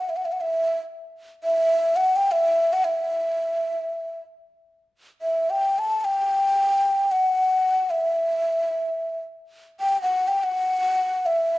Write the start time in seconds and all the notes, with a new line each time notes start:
0.00 F#5
0.09 E5
0.16 F#5
0.25 E5
0.32 F#5
0.41 E5
1.44 E5
1.96 F#5
2.16 G5
2.32 E5
2.73 F#5
2.84 E5
5.22 E5
5.50 G5
5.79 A5
6.00 G5 A5
7.11 F#5
7.90 E5
9.80 G5
10.02 F#5
10.28 G5
10.44 F#5
11.26 E5